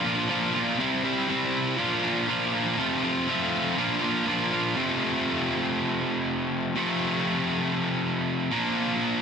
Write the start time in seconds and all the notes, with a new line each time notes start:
Already playing: A#2 F3
0.05 A#3 D4 F4
0.29 A#2 F3 A#3 D4 F4
0.54 A#3 D4 F4
0.78 C3 G3 C4 E4
1.03 G3 C4 E4
1.28 C3 G3 C4 E4
1.77 A#2 F3 A#3 D4 F4
2.02 A#3 D4 F4
2.28 A#2 F3 A#3 D4 F4
2.53 A#3 D4 F4
2.77 F2 C3 F3 A3 C4 F4
3.03 F3 A3 C4 F4
3.27 F3 A3 C4 F4
3.77 A#2 F3 A#3 D4 F4
4.01 A#3 D4 F4
4.26 A#2 F3 A#3 D4 F4
4.51 A#3 D4 F4
4.75 F2 C3 F3 A3 C4
6.75 F2 C3 F3 A3 C4
8.51 A#2 F3 A#3 D4